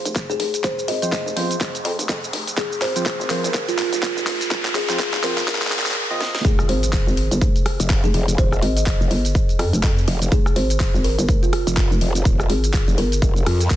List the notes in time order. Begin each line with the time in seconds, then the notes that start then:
Already playing: riser
0.05 F1, closed hi-hat, shaker
0.16 kick, clap, closed hi-hat, shaker
0.30 F1 G#4, shaker
0.40 F1 G#4, open hi-hat
0.54 closed hi-hat, shaker
0.64 D#1 C5, kick, clap, closed hi-hat, shaker
0.79 shaker
0.88 G#1 D#5, open hi-hat
1.02 F3 C4 F4 C5 D#5, closed hi-hat, shaker
1.12 kick, clap, closed hi-hat, shaker
1.26 F1, shaker
1.36 G1 F3 C4 F4 C5, open hi-hat
1.51 closed hi-hat, shaker
1.61 kick, clap, closed hi-hat, shaker
1.75 closed hi-hat, shaker
1.85 F2, open hi-hat
1.99 F1, closed hi-hat, shaker
2.09 F2, kick, clap, closed hi-hat, shaker
2.24 shaker
2.33 F1, open hi-hat
2.47 closed hi-hat, shaker
2.57 F1 G#4, kick, clap, closed hi-hat, shaker
2.72 shaker
2.82 G#1 C5, clap, open hi-hat
2.96 F3 C4 F4 C5, closed hi-hat, shaker
3.06 kick, clap, closed hi-hat, shaker
3.20 G#1, shaker
3.30 F3 C4 F4 A#4 C5, clap, open hi-hat
3.44 G1, closed hi-hat, shaker
3.54 F1, kick, clap, closed hi-hat, shaker
3.68 F4, closed hi-hat, shaker
3.79 clap, open hi-hat
3.93 F1, closed hi-hat, shaker
4.03 kick, clap, closed hi-hat, shaker
4.17 F1, shaker
4.27 F1, clap, open hi-hat
4.41 closed hi-hat, shaker
4.51 D#1, kick, clap, closed hi-hat, shaker
4.65 clap, shaker
4.75 G#1 G#4, clap, open hi-hat
4.89 F3 C4 F4 C5, clap, closed hi-hat, shaker
5.00 kick, clap, closed hi-hat, shaker
5.14 F1, clap, shaker
5.24 G1 F3 C4 F4 A#4 C5, clap, open hi-hat
5.38 clap, closed hi-hat, shaker
5.48 kick, clap, closed hi-hat, shaker
5.55 clap
5.62 clap, closed hi-hat, shaker
5.67 clap
5.72 clap, open hi-hat
5.79 clap
5.86 clap, closed hi-hat, shaker
5.91 clap
6.10 F3 C4 F4 D#5
6.21 snare
6.35 snare
6.45 F1 G#4, kick, closed hi-hat, impact, shaker
6.59 cross-stick, shaker
6.69 G#1 C5, open hi-hat
6.83 closed hi-hat, shaker
6.93 kick, clap, closed hi-hat, shaker
7.07 G#1, shaker
7.17 open hi-hat
7.31 G1, closed hi-hat, shaker
7.41 F1, kick, closed hi-hat, shaker
7.56 closed hi-hat, shaker
7.66 cross-stick, open hi-hat
7.80 F1, closed hi-hat, shaker
7.90 kick, clap, closed hi-hat, shaker
8.04 F1 G#4, shaker
8.14 F1 G#4, open hi-hat
8.28 closed hi-hat, shaker
8.38 D#1 C5, kick, closed hi-hat, shaker
8.52 cross-stick, shaker
8.62 G#1 D#5, open hi-hat
8.77 D#5, closed hi-hat, shaker
8.86 kick, clap, closed hi-hat, shaker
9.01 F1, shaker
9.11 G1, open hi-hat
9.25 closed hi-hat, shaker
9.35 kick, closed hi-hat, shaker
9.49 closed hi-hat, shaker
9.59 F2, cross-stick, open hi-hat
9.73 F1, closed hi-hat, shaker
9.83 F2, kick, clap, closed hi-hat, shaker
9.98 shaker
10.08 F1, open hi-hat
10.22 closed hi-hat, shaker
10.32 F1 G#4, kick, closed hi-hat, shaker
10.46 cross-stick, shaker
10.56 G#1 C5, open hi-hat
10.70 closed hi-hat, shaker
10.80 kick, clap, closed hi-hat, shaker
10.94 G#1, shaker
11.04 A#4, open hi-hat
11.18 G1, closed hi-hat, shaker
11.29 F1, kick, closed hi-hat, shaker
11.43 F4, closed hi-hat, shaker
11.53 cross-stick, open hi-hat
11.67 F1, closed hi-hat, shaker
11.77 kick, clap, closed hi-hat, shaker
11.91 F1, shaker
12.01 F1, open hi-hat
12.15 closed hi-hat, shaker
12.25 D#1, kick, closed hi-hat, shaker
12.40 cross-stick, shaker
12.50 G#1 G#4, open hi-hat
12.64 closed hi-hat, shaker
12.74 kick, clap, closed hi-hat, shaker
12.88 F1, closed hi-hat, shaker
12.98 G1 A#4, open hi-hat
13.12 closed hi-hat, shaker
13.22 F1, kick, closed hi-hat, shaker
13.36 closed hi-hat, shaker
13.46 F2, cross-stick, open hi-hat
13.61 closed hi-hat, shaker
13.70 kick, clap, closed hi-hat, shaker